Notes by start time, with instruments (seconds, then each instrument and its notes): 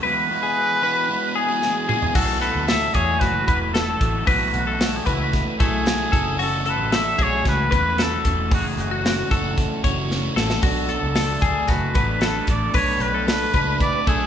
0.03 overdriven electric guitar E3 G#3 B3 E4 F#4, clean electric guitar B4, trumpet B4
0.28 overdriven electric guitar G#3 B3 E4 F#4
0.43 clean electric guitar G#4
0.82 overdriven electric guitar E3 G#3 B3 E4 F#4, clean electric guitar B4
1.08 overdriven electric guitar G#3 B3 E4 F#4
1.35 clean electric guitar G#4, trumpet G#4
1.48 overdriven electric guitar E3 G#3 B3 E4 F#4
1.62 snare
1.88 overdriven electric guitar G#3 B3 E4 F#4, clean electric guitar G#4, mid tom
2.02 floor tom
2.14 fingered electric bass B1, overdriven electric guitar B2 E3 A3 E4 F#4, clean electric guitar F#4, trumpet A4, kick, crash
2.41 clean electric guitar A4, trumpet B4, hi-hat pedal, open hi-hat
2.55 fingered electric bass D2
2.67 overdriven electric guitar E3 A3 E4 F#4, clean electric guitar A4, trumpet E5, snare, hi-hat pedal, open hi-hat
2.93 fingered electric bass E2, overdriven electric guitar E3 A3 E4 F#4, clean electric guitar G#4, trumpet C#5, kick, hi-hat pedal, open hi-hat
3.20 fingered electric bass F#1, clean electric guitar F#4, trumpet B4, kick, snare, hi-hat pedal, open hi-hat
3.46 fingered electric bass E1, overdriven electric guitar E3 A3 E4 F#4, trumpet B4, clean electric guitar B4, kick, hi-hat pedal, open hi-hat
3.73 overdriven electric guitar E3 A3 E4 F#4, trumpet A4, clean electric guitar A4, snare, hi-hat pedal, open hi-hat
3.99 fingered electric bass A1, overdriven electric guitar E3 A3 E4 F#4, kick, hi-hat pedal, open hi-hat
4.27 fingered electric bass B1, overdriven electric guitar B2 E3 A3 E4 F#4, trumpet F#4, clean electric guitar B4, kick, hi-hat pedal, open hi-hat
4.54 fingered electric bass B1, trumpet F#4, hi-hat pedal, open hi-hat
4.67 clean electric guitar A4
4.80 overdriven electric guitar E3 A3 E4 F#4, snare, hi-hat pedal, open hi-hat
4.96 trumpet G#4
5.06 fingered electric bass C#2, overdriven electric guitar E3 A3 E4, trumpet F#4, clean electric guitar B4, kick, hi-hat pedal, open hi-hat
5.10 trumpet E4, overdriven electric guitar F#4
5.24 trumpet F#4
5.33 kick, snare, hi-hat pedal, open hi-hat
5.60 fingered electric bass B1, overdriven electric guitar E3 A3 E4 F#4, clean electric guitar A3, trumpet G#4, kick, hi-hat pedal, open hi-hat
5.86 overdriven electric guitar E3 A3 E4 F#4, snare, hi-hat pedal, open hi-hat
6.12 fingered electric bass F#1, overdriven electric guitar E3 A3 C#4 F#4, clean electric guitar A4, kick, hi-hat pedal, open hi-hat
6.39 overdriven electric guitar F#2 C#3 E3 A3 C#4 F#4, clean electric guitar F#4, trumpet A4, hi-hat pedal, open hi-hat
6.66 clean electric guitar A4, trumpet B4, hi-hat pedal, open hi-hat
6.79 fingered electric bass A1
6.92 overdriven electric guitar E3 A3 C#4 F#4, clean electric guitar A4, trumpet E5, snare, hi-hat pedal, open hi-hat
7.18 fingered electric bass B1, overdriven electric guitar E3 A3 C#4 F#4, clean electric guitar G#4, kick, hi-hat pedal, open hi-hat
7.23 trumpet C#5
7.44 fingered electric bass C#2, clean electric guitar F#4, trumpet B4, kick, snare, hi-hat pedal, open hi-hat
7.71 fingered electric bass E2, overdriven electric guitar E3 A3 C#4 F#4, clean electric guitar B4, kick, hi-hat pedal, open hi-hat
7.75 trumpet B4
7.98 overdriven electric guitar E3 A3 C#4 F#4, clean electric guitar A4, snare, hi-hat pedal, open hi-hat
8.02 trumpet A4
8.24 fingered electric bass E1, overdriven electric guitar E3 A3 C#4 F#4, kick, hi-hat pedal, open hi-hat
8.51 fingered electric bass F#1, overdriven electric guitar F#2 C#3 E3 A3 C#4 F#4, trumpet F#4, clean electric guitar G#4, kick, hi-hat pedal, open hi-hat
8.77 fingered electric bass F#1, trumpet F#4, hi-hat pedal, open hi-hat
8.91 clean electric guitar F#4
9.04 overdriven electric guitar E3 A3 C#4 F#4, snare, hi-hat pedal, open hi-hat
9.30 fingered electric bass F#1, overdriven electric guitar E3 A3 C#4 F#4, clean electric guitar A4, kick, hi-hat pedal, open hi-hat
9.58 kick, hi-hat pedal, open hi-hat
9.84 fingered electric bass F#1, overdriven electric guitar E3 A3 C#4 F#4, clean electric guitar C#5, kick, hi-hat pedal, open hi-hat
10.10 overdriven electric guitar E3 A3 C#4 F#4, snare
10.36 fingered electric bass A1, overdriven electric guitar E3 A3 C#4 F#4, clean electric guitar A4, snare
10.50 snare
10.62 fingered electric bass B1, overdriven electric guitar B2 F#3 A3 D4 A4, clean electric guitar F#4, trumpet A4, kick, hi-hat pedal, open hi-hat
10.89 clean electric guitar A4, hi-hat pedal, open hi-hat
11.03 fingered electric bass C#2
11.15 overdriven electric guitar F#3 A3 D4 A4, clean electric guitar A4, snare, hi-hat pedal, open hi-hat
11.41 fingered electric bass D2, overdriven electric guitar F#3 A3 D4, clean electric guitar G#4, kick, hi-hat pedal, open hi-hat
11.45 overdriven electric guitar A4
11.68 fingered electric bass F#1, clean electric guitar F#4, trumpet B4, kick, snare, hi-hat pedal, open hi-hat
11.94 fingered electric bass A1, overdriven electric guitar F#3 A3 D4 A4, clean electric guitar B4, kick, hi-hat pedal, open hi-hat
12.21 overdriven electric guitar F#3 A3 D4 A4, clean electric guitar A4, snare, hi-hat pedal, open hi-hat
12.47 fingered electric bass A1, overdriven electric guitar F#3 A3 D4 A4, trumpet D5, kick, hi-hat pedal, open hi-hat
12.73 fingered electric bass B1, overdriven electric guitar B2 F#3 A3 D4 A4, clean electric guitar B4, trumpet C#5, kick, hi-hat pedal, open hi-hat
13.00 fingered electric bass B1, trumpet B4, hi-hat pedal, open hi-hat
13.14 clean electric guitar A4
13.27 overdriven electric guitar F#3 A3 D4 A4, trumpet B4, snare, hi-hat pedal, open hi-hat
13.53 fingered electric bass C#2, overdriven electric guitar F#3 A3 D4 A4, clean electric guitar B4, kick, hi-hat pedal, open hi-hat
13.80 trumpet D5, kick, hi-hat pedal, open hi-hat
14.07 fingered electric bass B1, overdriven electric guitar F#3 A3 D4 A4, clean electric guitar A3, trumpet G#4, kick, hi-hat pedal, open hi-hat